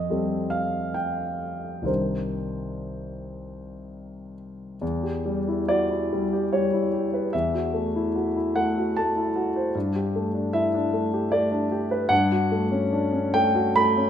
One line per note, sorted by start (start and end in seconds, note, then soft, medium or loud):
0.00 1.91 F2 soft
0.00 0.51 D#5 medium
0.10 1.84 G3 soft
0.10 1.84 C4 soft
0.10 1.84 G4 soft
0.10 1.84 A4 soft
0.50 0.94 F5 medium
0.94 1.87 G5 medium
1.82 4.75 C2 soft
1.82 4.75 D#3 soft
1.82 4.76 D4 soft
1.82 4.76 G4 soft
1.82 4.77 A#4 soft
1.82 4.33 C5 soft
4.81 7.29 E2 soft
5.03 5.39 G4 soft
5.25 5.60 G3 soft
5.48 5.82 E4 soft
5.68 5.91 F#4 soft
5.68 6.52 D5 medium
5.91 6.24 E4 soft
6.13 6.45 G3 soft
6.33 6.65 G4 soft
6.53 6.86 G3 soft
6.53 7.33 C#5 soft
6.73 7.05 E4 soft
6.94 7.25 G4 soft
7.14 7.33 B4 soft
7.33 9.71 E2 soft
7.33 8.56 E5 medium
7.54 7.87 F#4 soft
7.74 8.07 A3 soft
7.96 8.28 E4 soft
8.16 8.36 F#4 soft
8.36 8.68 E4 soft
8.56 8.88 A3 soft
8.56 8.96 F#5 medium
8.78 9.09 F#4 soft
8.97 9.29 A3 soft
8.97 9.75 A5 medium
9.16 9.48 E4 soft
9.36 9.67 F#4 soft
9.56 9.75 C5 soft
9.75 12.07 G2 soft
9.96 10.27 G4 soft
10.16 10.47 A3 soft
10.34 10.67 D4 soft
10.53 10.74 E4 soft
10.53 11.33 E5 medium
10.74 11.06 D4 soft
10.94 11.25 A3 soft
11.13 11.45 G4 soft
11.32 11.64 A3 soft
11.32 12.10 D5 medium
11.52 11.83 D4 soft
11.72 12.03 G4 soft
11.91 12.11 B4 soft
12.09 14.10 G2 medium
12.09 13.32 F#5 medium
12.32 12.64 F#4 soft
12.52 12.84 A3 soft
12.72 13.04 C#4 soft
12.93 13.13 D4 soft
13.13 13.46 C#4 soft
13.34 13.67 A3 soft
13.34 13.75 G5 medium
13.55 13.88 F#4 soft
13.76 14.09 A3 soft
13.76 14.10 B5 medium
13.97 14.10 C#4 soft